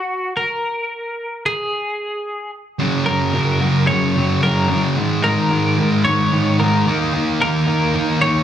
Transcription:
0.00 0.33 F#4 medium
0.37 1.46 A#4 medium
1.46 2.50 G#4 medium
2.79 3.05 F#2 medium
2.79 3.06 C#3 medium
2.79 3.07 F#3 medium
3.06 3.32 F#2 medium
3.06 3.33 C#3 medium
3.06 3.33 F#3 medium
3.06 3.87 A#4 medium
3.34 3.60 F#2 medium
3.34 3.61 C#3 medium
3.34 3.61 F#3 medium
3.61 3.87 F#2 medium
3.61 3.88 C#3 medium
3.61 3.88 F#3 medium
3.87 4.15 F#2 medium
3.87 4.15 C#3 loud
3.87 4.15 F#3 loud
3.87 4.43 C#5 medium
4.16 4.41 F#2 medium
4.16 4.42 C#3 medium
4.16 4.42 F#3 medium
4.43 4.68 F#2 medium
4.43 4.69 C#3 medium
4.43 4.69 F#3 medium
4.43 4.81 A#4 medium
4.69 4.95 F#2 medium
4.69 4.96 C#3 medium
4.69 4.96 F#3 medium
4.97 5.22 G#2 medium
4.97 5.23 D#3 loud
4.97 5.23 G#3 loud
5.23 5.49 G#2 medium
5.23 5.50 D#3 medium
5.23 5.51 G#3 medium
5.23 6.04 A#4 medium
5.50 5.77 G#2 medium
5.50 5.77 D#3 medium
5.50 5.78 G#3 medium
5.78 6.04 G#2 medium
5.78 6.05 D#3 medium
5.78 6.05 G#3 medium
6.05 6.32 G#2 loud
6.05 6.32 D#3 loud
6.05 6.32 G#3 loud
6.05 6.56 C#5 loud
6.33 6.59 G#2 medium
6.33 6.59 D#3 medium
6.33 6.60 G#3 medium
6.60 6.85 G#2 medium
6.60 6.85 D#3 medium
6.60 6.86 G#3 medium
6.60 6.98 A#4 medium
6.87 7.13 D#3 medium
6.87 7.13 A#3 loud
6.87 7.14 D#4 loud
7.13 7.41 D#3 medium
7.13 7.42 A#3 loud
7.13 7.43 D#4 loud
7.41 7.67 D#3 medium
7.41 7.67 A#3 loud
7.41 7.68 D#4 medium
7.41 8.21 A#4 medium
7.67 7.94 D#3 medium
7.67 7.95 A#3 medium
7.67 7.95 D#4 medium
7.94 8.21 D#3 medium
7.94 8.22 A#3 loud
7.94 8.23 D#4 loud
8.21 8.43 D#3 loud
8.21 8.43 A#3 loud
8.21 8.43 D#4 loud
8.21 8.43 C#5 loud

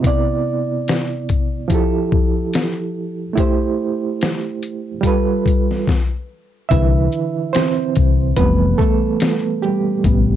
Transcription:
0.00 1.56 C3 medium
0.00 1.58 B3 medium
0.04 1.59 E4 medium
0.04 1.60 D5 medium
0.04 kick loud
0.04 closed hi-hat medium
0.88 snare loud
0.88 closed hi-hat medium
1.29 kick medium
1.29 closed hi-hat soft
1.68 3.24 F3 medium
1.68 3.25 E4 medium
1.68 kick medium
1.68 closed hi-hat medium
1.72 3.26 G4 medium
1.72 3.27 A4 medium
2.12 kick loud
2.54 snare loud
2.54 closed hi-hat medium
3.33 4.90 A3 medium
3.33 4.91 E4 medium
3.37 4.92 G4 medium
3.37 4.93 C5 medium
3.37 kick loud
3.37 closed hi-hat medium
4.22 snare loud
4.22 closed hi-hat medium
4.63 closed hi-hat soft
5.01 5.86 G3 medium
5.01 5.87 F4 medium
5.01 kick medium
5.01 closed hi-hat medium
5.05 5.88 A4 medium
5.05 5.89 B4 medium
5.46 kick loud
5.46 closed hi-hat soft
5.71 snare soft
5.87 kick medium
5.87 snare medium
6.69 7.07 C2 loud
6.69 8.33 D3 medium
6.69 8.33 E3 soft
6.69 7.50 E4 medium
6.69 8.34 B4 soft
6.69 7.49 E5 medium
6.69 kick loud
6.69 closed hi-hat medium
7.12 shaker soft
7.53 8.34 C4 medium
7.53 8.39 C5 medium
7.53 snare loud
7.53 closed hi-hat medium
7.95 8.32 C2 medium
7.95 kick medium
7.95 closed hi-hat soft
7.95 shaker soft
8.36 8.73 F1 loud
8.36 10.00 E3 soft
8.36 9.63 G3 soft
8.36 8.79 A3 medium
8.36 8.77 B3 medium
8.36 8.80 B4 medium
8.36 kick medium
8.36 closed hi-hat medium
8.78 9.59 A3 medium
8.78 9.64 A4 medium
8.78 kick loud
8.78 shaker medium
9.20 snare loud
9.20 closed hi-hat medium
9.62 10.04 G3 medium
9.62 10.36 G4 medium
9.62 shaker soft
10.04 10.36 A1 medium
10.04 10.36 C3 soft
10.04 10.36 G3 soft
10.04 10.36 B3 medium
10.04 kick loud
10.04 closed hi-hat medium

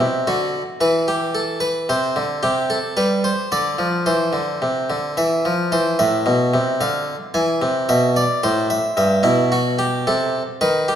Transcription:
0.00 0.26 C3 medium
0.27 0.61 D3 medium
0.27 0.61 F#4 medium
0.81 1.86 E3 medium
0.81 1.07 B4 medium
1.08 1.34 G4 medium
1.35 1.61 A4 medium
1.60 1.88 B4 medium
1.89 2.16 C3 medium
1.89 2.23 C5 medium
2.16 2.42 D3 medium
2.43 2.77 C3 medium
2.43 2.69 G4 medium
2.70 2.96 A4 medium
2.97 3.31 G3 medium
2.97 3.23 B4 medium
3.24 3.51 C5 medium
3.52 3.78 D3 medium
3.52 3.86 D5 medium
3.79 4.05 F3 medium
4.06 4.33 E3 medium
4.06 5.13 C5 medium
4.33 4.60 D3 medium
4.62 4.89 C3 medium
4.90 5.16 D3 medium
5.17 5.44 E3 medium
5.17 5.52 E5 medium
5.45 5.72 F3 medium
5.72 5.99 E3 medium
5.72 5.99 C5 medium
5.99 6.26 A2 medium
5.99 6.78 E5 medium
6.26 6.53 B2 medium
6.54 6.80 C3 medium
6.81 7.14 D3 medium
6.81 7.14 F5 medium
7.34 7.61 E3 medium
7.34 7.68 G#5 medium
7.62 7.88 C3 medium
7.89 8.23 B2 medium
7.89 8.15 E5 medium
8.16 8.43 D5 medium
8.43 8.77 A2 medium
8.43 8.70 C5 medium
8.70 8.96 E5 medium
8.97 9.23 G2 medium
8.97 9.24 E5 medium
9.23 10.03 B2 medium
9.23 9.50 E4 medium
9.52 9.78 F#4 medium
9.79 10.05 G4 medium
10.07 10.41 C3 medium
10.07 10.41 A4 medium
10.61 10.95 D#3 medium
10.61 10.88 B4 medium
10.88 10.95 G4 medium

